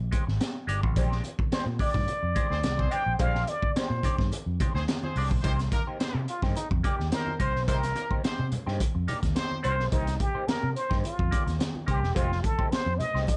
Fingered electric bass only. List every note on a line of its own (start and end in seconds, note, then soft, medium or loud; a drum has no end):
0.00 0.10 A#1 medium
0.27 0.38 G#1 medium
0.67 0.83 G1 medium
0.83 0.94 A1 loud
0.96 1.20 A#1 medium
1.39 muted fingered electric bass stroke soft
1.52 muted fingered electric bass stroke soft
1.66 1.77 A#2 loud
1.94 2.06 G2 medium
2.23 2.34 F2 medium
2.50 2.65 D2 medium
2.63 2.87 C2 medium
3.06 3.18 A#1 medium
3.19 3.44 A#1 loud
3.63 muted fingered electric bass stroke soft
3.76 muted fingered electric bass stroke soft
3.90 4.02 A#2 loud
4.18 4.30 G2 medium
4.46 4.58 F2 medium
4.74 4.86 D2 medium
5.16 5.31 C2 medium
5.31 5.42 B1 loud
5.44 5.68 C2 loud
5.86 muted fingered electric bass stroke soft
6.00 muted fingered electric bass stroke soft
6.15 6.26 C3 loud
6.43 6.54 G2 medium
6.71 6.82 F2 medium
6.99 7.10 D#2 medium
7.40 7.55 C2 medium
7.55 7.68 B1 loud
7.68 7.92 C2 loud
8.11 muted fingered electric bass stroke soft
8.24 muted fingered electric bass stroke soft
8.39 8.50 C3 loud
8.67 8.78 G2 medium
8.95 9.06 F2 medium
9.23 9.34 D#2 medium
9.65 9.79 C2 medium
9.79 9.90 B1 loud
9.92 10.16 C2 loud
10.35 muted fingered electric bass stroke soft
10.48 muted fingered electric bass stroke soft
10.63 10.74 C3 medium
10.91 11.02 G2 loud
11.19 11.30 F2 medium
11.47 11.58 D#2 medium
11.88 12.00 C2 medium
12.03 12.14 E1 loud
12.16 12.40 F1 medium
12.59 muted fingered electric bass stroke soft
12.71 muted fingered electric bass stroke soft
12.86 12.98 F2 loud
13.14 13.25 C2 medium